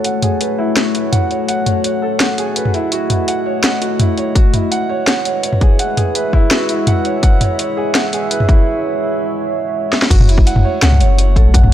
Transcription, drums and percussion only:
0.04 closed hi-hat medium
0.22 closed hi-hat medium
0.22 mid tom medium
0.41 closed hi-hat medium
0.77 snare loud
0.77 closed hi-hat medium
0.95 closed hi-hat medium
1.13 closed hi-hat medium
1.13 mid tom medium
1.31 closed hi-hat soft
1.49 closed hi-hat medium
1.66 closed hi-hat medium
1.66 mid tom soft
1.84 closed hi-hat medium
2.20 snare loud
2.20 closed hi-hat medium
2.38 closed hi-hat medium
2.56 closed hi-hat medium
2.65 mid tom soft
2.74 closed hi-hat soft
2.92 closed hi-hat medium
3.10 closed hi-hat medium
3.10 mid tom soft
3.28 closed hi-hat medium
3.64 snare loud
3.64 closed hi-hat medium
3.82 closed hi-hat medium
4.00 closed hi-hat medium
4.00 mid tom medium
4.18 closed hi-hat soft
4.35 kick loud
4.35 closed hi-hat medium
4.54 closed hi-hat medium
4.54 mid tom soft
4.72 closed hi-hat medium
5.07 snare loud
5.07 closed hi-hat medium
5.25 closed hi-hat medium
5.43 closed hi-hat medium
5.53 mid tom soft
5.61 kick loud
5.61 closed hi-hat soft
5.79 closed hi-hat medium
5.97 closed hi-hat medium
5.97 mid tom medium
6.15 closed hi-hat medium
6.33 kick medium
6.51 snare loud
6.51 closed hi-hat medium
6.69 closed hi-hat medium
6.87 closed hi-hat medium
6.87 mid tom medium
7.05 closed hi-hat soft
7.23 kick loud
7.23 closed hi-hat medium
7.41 closed hi-hat medium
7.41 mid tom medium
7.59 closed hi-hat medium
7.95 snare loud
7.95 closed hi-hat medium
8.13 closed hi-hat medium
8.31 closed hi-hat medium
8.40 mid tom medium
8.49 kick loud
8.49 closed hi-hat soft
9.93 snare medium
10.02 snare medium
10.10 kick loud
10.10 closed hi-hat medium
10.10 mid tom medium
10.10 crash loud
10.20 mid tom medium
10.29 closed hi-hat medium
10.38 kick loud
10.47 closed hi-hat medium
10.56 mid tom medium
10.82 snare loud
10.82 closed hi-hat medium
10.92 mid tom medium
11.00 closed hi-hat medium
11.18 closed hi-hat medium
11.36 kick medium
11.36 closed hi-hat soft
11.54 kick loud
11.54 closed hi-hat medium
11.54 mid tom medium
11.64 mid tom medium

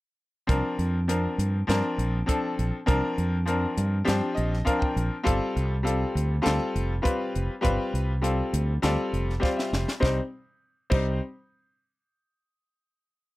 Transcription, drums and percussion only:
0.49 kick loud
0.49 closed hi-hat medium
0.79 closed hi-hat medium
1.09 closed hi-hat medium
1.39 closed hi-hat medium
1.69 snare medium
1.69 closed hi-hat medium
1.99 closed hi-hat medium
2.29 kick medium
2.29 closed hi-hat medium
2.59 closed hi-hat medium
2.88 kick loud
2.88 closed hi-hat medium
3.18 closed hi-hat medium
3.48 closed hi-hat medium
3.77 closed hi-hat medium
4.08 snare loud
4.08 closed hi-hat medium
4.37 closed hi-hat medium
4.54 snare soft
4.67 kick medium
4.67 closed hi-hat medium
4.82 kick medium
4.97 closed hi-hat medium
5.27 kick loud
5.27 closed hi-hat medium
5.57 closed hi-hat medium
5.87 closed hi-hat medium
6.17 closed hi-hat medium
6.46 snare loud
6.46 closed hi-hat medium
6.76 closed hi-hat medium
7.05 kick medium
7.05 closed hi-hat medium
7.36 closed hi-hat medium
7.65 kick loud
7.65 closed hi-hat medium
7.95 closed hi-hat medium
8.24 closed hi-hat medium
8.54 closed hi-hat medium
8.83 snare medium
8.83 closed hi-hat medium
9.14 closed hi-hat medium
9.30 snare soft
9.43 kick medium
9.43 snare medium
9.59 snare medium
9.73 snare medium
9.88 snare medium
10.03 kick loud
10.03 snare medium
10.91 kick loud
10.91 crash medium

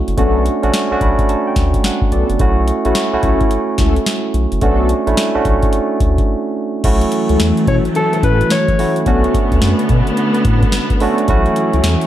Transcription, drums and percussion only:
0.08 closed hi-hat medium
0.18 kick loud
0.18 closed hi-hat medium
0.46 closed hi-hat medium
0.63 closed hi-hat soft
0.73 snare loud
0.73 closed hi-hat medium
1.01 kick medium
1.01 closed hi-hat medium
1.19 kick medium
1.19 closed hi-hat soft
1.29 closed hi-hat medium
1.56 kick medium
1.56 snare medium
1.56 closed hi-hat medium
1.74 kick medium
1.74 closed hi-hat medium
1.84 snare loud
1.84 closed hi-hat medium
2.02 kick medium
2.12 closed hi-hat medium
2.30 closed hi-hat medium
2.39 kick loud
2.39 closed hi-hat medium
2.68 closed hi-hat medium
2.85 closed hi-hat soft
2.95 snare loud
2.95 closed hi-hat medium
3.23 kick medium
3.23 closed hi-hat medium
3.41 kick medium
3.41 closed hi-hat soft
3.51 closed hi-hat medium
3.78 kick loud
3.78 snare medium
3.78 closed hi-hat medium
3.96 closed hi-hat medium
4.06 snare loud
4.06 closed hi-hat medium
4.34 closed hi-hat medium
4.52 closed hi-hat medium
4.61 kick loud
4.61 closed hi-hat medium
4.89 closed hi-hat medium
5.07 closed hi-hat soft
5.17 snare loud
5.17 closed hi-hat medium
5.45 kick medium
5.45 closed hi-hat medium
5.62 kick medium
5.62 closed hi-hat soft
5.73 closed hi-hat medium
6.00 kick medium
6.00 closed hi-hat medium
6.18 kick medium
6.18 closed hi-hat medium
6.84 kick loud
6.84 closed hi-hat medium
6.84 crash medium
7.01 closed hi-hat medium
7.12 closed hi-hat medium
7.29 closed hi-hat medium
7.40 snare loud
7.40 closed hi-hat medium
7.57 closed hi-hat medium
7.67 kick medium
7.67 closed hi-hat medium
7.85 closed hi-hat medium
7.95 closed hi-hat medium
8.13 closed hi-hat medium
8.23 kick loud
8.23 closed hi-hat medium
8.41 closed hi-hat medium
8.50 snare loud
8.50 closed hi-hat medium
8.68 kick medium
8.68 closed hi-hat soft
8.79 open hi-hat medium
8.96 closed hi-hat medium
9.06 kick loud
9.06 closed hi-hat medium
9.24 closed hi-hat medium
9.34 kick medium
9.34 closed hi-hat medium
9.51 kick medium
9.51 closed hi-hat soft
9.62 snare loud
9.62 closed hi-hat medium
9.79 closed hi-hat medium
9.89 kick loud
9.89 closed hi-hat medium
10.07 closed hi-hat medium
10.17 closed hi-hat medium
10.34 closed hi-hat medium
10.45 kick loud
10.45 closed hi-hat medium
10.62 kick loud
10.62 closed hi-hat medium
10.72 snare loud
10.72 closed hi-hat medium
10.90 kick medium
10.90 closed hi-hat soft
11.00 open hi-hat medium
11.18 closed hi-hat medium
11.28 kick loud
11.28 closed hi-hat medium
11.46 closed hi-hat medium
11.56 closed hi-hat medium
11.73 closed hi-hat soft
11.84 snare loud
11.84 closed hi-hat medium
12.01 closed hi-hat medium

